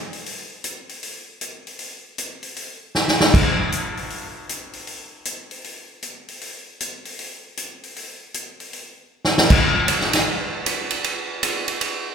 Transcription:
0.13 open hi-hat
0.26 open hi-hat
0.64 closed hi-hat
0.89 open hi-hat
1.03 open hi-hat
1.41 closed hi-hat
1.67 open hi-hat
1.79 open hi-hat
2.18 closed hi-hat
2.43 open hi-hat
2.56 open hi-hat
2.95 snare
3.08 snare
3.21 snare
3.34 kick, crash
3.72 closed hi-hat
3.97 open hi-hat
4.10 open hi-hat
4.49 closed hi-hat
4.73 open hi-hat
4.87 open hi-hat
5.25 closed hi-hat
5.51 open hi-hat
5.64 open hi-hat
6.02 closed hi-hat
6.28 open hi-hat
6.41 open hi-hat
6.80 closed hi-hat
7.05 open hi-hat
7.19 open hi-hat
7.57 closed hi-hat
7.83 open hi-hat
7.96 open hi-hat
8.34 closed hi-hat
8.60 open hi-hat
8.73 open hi-hat
9.25 snare
9.38 snare
9.50 kick, crash
9.88 hi-hat pedal, ride
10.01 snare
10.13 snare, ride
10.66 hi-hat pedal, ride
10.90 ride
11.04 ride
11.43 hi-hat pedal, ride
11.68 ride
11.81 ride

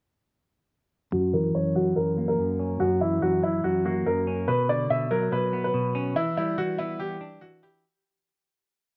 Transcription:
1.12 F#2 F#4
1.33 E3 A#4
1.54 F#2 C#5
1.75 F#3 F#4
1.96 F#2 A#4
2.17 A#3
2.28 A#4
2.38 F#2
2.59 C#4
2.80 F#2 F#4
3.01 E3 E4
3.22 F#2 F#4
3.43 F#3 E4
3.64 F#2 F#4
3.85 A#3 F#4
4.06 F#2 A#4
4.27 C#4
4.48 B2 B4
4.69 D3 D5
4.90 B2 E5
5.11 F#3 A#4
5.32 B2 B4
5.53 B3
5.64 B4
5.74 B2
5.95 C#4
6.16 E3 E4
6.37 G3 E4
6.58 E3 F#4
6.78 B3 E4
7.00 E3 G4
7.21 D4
7.41 E3 F#4
7.63 E4 G4

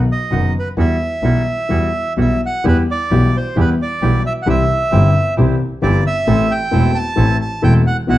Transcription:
0.12 D#5
0.31 F#1 F#2 D#3 F#3 B3 D#4 F#4
0.59 B4
0.77 E2 E3 G3 B3 E4 F#4 E5
1.22 B1 B2 E3 G3 B3 E4 F#4
1.69 E2 E3 G3 B3 E4 F#4
2.17 B1 B2 E3 G3 B3 E4 F#4
2.21 E5
2.46 F#5
2.63 E2 E3 G3 B3 E4 G4
2.68 B4
2.91 D5
3.10 B1 B2 E3 G3 B3 E4 G4
3.37 C5
3.56 E2 E3 G3 B3 E4 G4
3.60 B4
3.82 D5
4.02 B1 B2 E3 G3 B3 E4 G4
4.26 E5
4.42 C2 C4 E4 F#5
4.46 C2 C3 E3 G3 C4 G4 E5
4.91 G1 G2 E3 G3 C4 E4 G4
5.37 C2 C3 E3 G3 C4 E4 G4
5.82 G1 G2 E3 G3 C4 E4 G4 D5
6.07 E5
6.27 A1 A2 E3 A3 C4 E4 A4
6.51 G5
6.71 E1 E2 E3 A3 C4 E4 A4
6.95 A5
7.16 A1 A2 E3 A3 C4 E4 A4
7.41 A5
7.62 E1 E2 E3 A3 C4 E4 A4 G5
7.87 F#5
8.07 B1 B2 E3 F#3 B3 E4 F#4 F#5

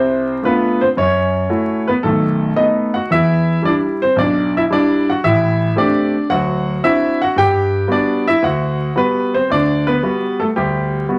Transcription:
Already playing: C2 C4 C5
0.43 A3 D4 F4 B4
0.47 B3
0.81 C4 C5
0.97 F#2 C#4 C#5
1.49 A3 E4 F#4
1.88 B3 B4
2.03 B1 D#3 A3 A4
2.56 A3 B3 D#4 D#5
2.94 F#4 F#5
3.10 E2 E3 E4 E5
3.63 G3 D4 E4 D5
3.68 D4
4.02 C4 C5
4.16 B1 D5
4.21 D4
4.57 E4 E5
4.70 G3 D4 E4 D5
5.10 F#4 F#5
5.24 A1 E4 E5
5.76 A3 C4 D4 G4 D5
6.30 D2 F#3 F#4 F#5
6.83 C4 D4 E4 F#4 E5
7.22 F#4 F#5
7.36 G2 G4 G5
7.88 G3 B3 F#4
7.92 D4 D5
8.27 E4 E5
8.42 D2 F#4 F#5
8.96 G3 B3 F#4 B4
9.34 C4 C5
9.50 D2 D4 D5
9.87 B3 B4
10.03 G3 B3 F#4
10.40 A3 A4
10.56 D2 G3 G4
11.09 G3 B3 F#4

